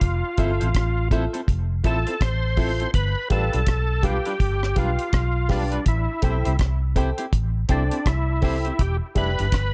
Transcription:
Already playing: tonewheel organ F4
0.01 fingered electric bass F1, kick, closed hi-hat
0.38 fingered electric bass G1, clean electric guitar C4 E4 A4 C5, upright piano F4 A4 E5, kick, closed hi-hat
0.60 fingered electric bass A1, clean electric guitar C4 E4 A4 C5, closed hi-hat
0.75 fingered electric bass A1, kick, cross-stick, closed hi-hat
1.11 clean electric guitar C4 E4 A4 C5, upright piano F4 A4 E5, kick, closed hi-hat
1.33 clean electric guitar C4 E4 A4 C5, closed hi-hat
1.48 fingered electric bass F1, kick, closed hi-hat
1.84 fingered electric bass A1, clean electric guitar C4 E4 A4 C5, upright piano F4 A4 E5, tonewheel organ A4, kick, closed hi-hat
2.07 clean electric guitar C4 E4 A4 C5, closed hi-hat
2.21 fingered electric bass A1, tonewheel organ C5, kick, cross-stick, closed hi-hat
2.57 clean electric guitar C4 E4 A4 C5, upright piano F4 A4 E5, kick, open hi-hat
2.80 clean electric guitar C4 E4 A4 C5, closed hi-hat
2.94 fingered electric bass G1, tonewheel organ B4, kick, closed hi-hat
3.30 fingered electric bass A1, clean electric guitar G3 D4 F4 B4, upright piano G4 B4 F5, tonewheel organ A4, kick, closed hi-hat
3.52 fingered electric bass B1, clean electric guitar G3 D4 F4 B4, closed hi-hat
3.67 fingered electric bass B1, kick, cross-stick, closed hi-hat
4.03 clean electric guitar G3 D4 F4 B4, upright piano G4 B4 F5, tonewheel organ G4, kick, closed hi-hat
4.25 clean electric guitar G3 D4 F4 B4, closed hi-hat
4.40 fingered electric bass G1, kick, closed hi-hat
4.63 cross-stick
4.76 fingered electric bass B1, clean electric guitar G3 D4 F4 B4, tonewheel organ F4, upright piano G4 B4 F5, kick, closed hi-hat
4.99 closed hi-hat
5.13 fingered electric bass B1, kick, cross-stick, closed hi-hat
5.49 clean electric guitar G3 D4 F4 B4, tonewheel organ D4, upright piano G4 B4 F5, kick, cross-stick, open hi-hat
5.72 clean electric guitar G3 D4 F4 B4, closed hi-hat
5.86 fingered electric bass A1, tonewheel organ E4, kick, closed hi-hat
6.22 fingered electric bass B1, clean electric guitar C4 E4 G4 C5, upright piano A4 C5 G5, kick, closed hi-hat
6.45 fingered electric bass C2, clean electric guitar C4 E4 G4 C5, closed hi-hat
6.59 fingered electric bass C2, kick, cross-stick, closed hi-hat
6.95 clean electric guitar C4 E4 G4 C5, upright piano A4 C5 G5, kick, closed hi-hat
7.18 clean electric guitar C4 E4 G4 C5, closed hi-hat
7.33 fingered electric bass A1, kick, closed hi-hat
7.69 fingered electric bass C2, clean electric guitar C4 E4 G4 C5, tonewheel organ D4, upright piano A4 C5 G5, kick, closed hi-hat
7.91 clean electric guitar C4 E4 G4 C5, closed hi-hat
8.06 fingered electric bass C2, tonewheel organ E4, kick, cross-stick, closed hi-hat
8.41 clean electric guitar C4 E4 G4 C5, upright piano A4 C5 G5, kick, open hi-hat
8.65 clean electric guitar C4 E4 G4 C5, closed hi-hat
8.79 fingered electric bass E1, tonewheel organ G4, kick, closed hi-hat
9.15 fingered electric bass F1, clean electric guitar G3 D4 E4 B4, upright piano G4 D5 E5, tonewheel organ B4, kick, closed hi-hat
9.38 fingered electric bass G1, clean electric guitar G3 D4 E4 B4, closed hi-hat
9.52 fingered electric bass G1, kick, cross-stick, closed hi-hat

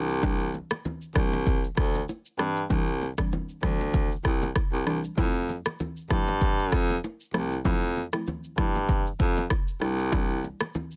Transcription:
Already playing: baritone saxophone C2, synth pluck E3 G3 C4 D4, downlifter
0.09 shaker
0.22 synth pluck E3 G3 C4 D4, kick, low conga, shaker
0.40 shaker
0.54 low bongo, shaker
0.71 cross-stick, low bongo, shaker
0.85 high bongo, low conga, shaker
1.01 shaker
1.15 baritone saxophone C2, synth pluck E3 G3 C4 D4, kick, cross-stick, shaker
1.33 low bongo, shaker
1.47 kick, low conga, shaker
1.64 shaker
1.77 baritone saxophone D2, kick, cross-stick, high bongo, shaker
1.94 low bongo, shaker
2.09 high bongo, shaker
2.25 shaker
2.39 baritone saxophone G2, synth pluck E3 G3 C4 D4, cross-stick, shaker
2.57 shaker
2.70 baritone saxophone C2, synth pluck E3 G3 C4 D4, kick, low conga, shaker
2.87 shaker
3.01 low bongo, shaker
3.18 synth pluck E3 G3 C4 D4, kick, cross-stick, low bongo, shaker
3.32 high bongo, low conga, shaker
3.49 shaker
3.63 baritone saxophone D2, synth pluck E3 G3 C4 D4, kick, cross-stick, shaker
3.80 low bongo, shaker
3.94 kick, low conga, shaker
4.11 shaker
4.25 baritone saxophone C2, kick, cross-stick, high bongo, shaker
4.42 low bongo, shaker
4.56 kick, cross-stick, high bongo, shaker
4.73 baritone saxophone C2, shaker
4.86 baritone saxophone C2, synth pluck E3 G3 C4 D4, cross-stick, shaker
5.04 shaker
5.17 baritone saxophone F2, synth pluck F3 A3 C4 E4, kick, low conga, shaker
5.35 shaker
5.49 low bongo, shaker
5.66 cross-stick, low bongo, shaker
5.80 high bongo, low conga, shaker
5.97 shaker
6.10 baritone saxophone G2, synth pluck F3 A3 C4 E4, kick, cross-stick, shaker
6.28 low bongo, shaker
6.41 kick, low conga, shaker
6.59 shaker
6.72 baritone saxophone F2, kick, cross-stick, high bongo, shaker
6.89 low bongo, shaker
7.04 high bongo, shaker
7.20 shaker
7.34 baritone saxophone C2, synth pluck F3 A3 C4 E4, cross-stick, shaker
7.52 shaker
7.65 baritone saxophone F2, synth pluck F3 A3 C4 E4, kick, low conga, shaker
7.82 shaker
7.96 low bongo, shaker
8.13 synth pluck F3 A3 C4 E4, cross-stick, low bongo, shaker
8.27 high bongo, low conga, shaker
8.44 shaker
8.58 baritone saxophone G2, synth pluck F3 A3 C4 E4, kick, cross-stick, shaker
8.75 low bongo, shaker
8.89 kick, low conga, shaker
9.06 shaker
9.19 baritone saxophone F2, kick, high bongo, shaker
9.37 low bongo, shaker
9.50 kick, cross-stick, high bongo, shaker
9.68 shaker
9.81 baritone saxophone C2, synth pluck G3 C4 D4 E4, cross-stick, shaker
9.99 shaker
10.12 synth pluck G3 C4 D4 E4, kick, low conga, shaker
10.30 shaker
10.44 low bongo, shaker
10.60 cross-stick, low bongo, shaker
10.74 high bongo, low conga, shaker
10.91 shaker

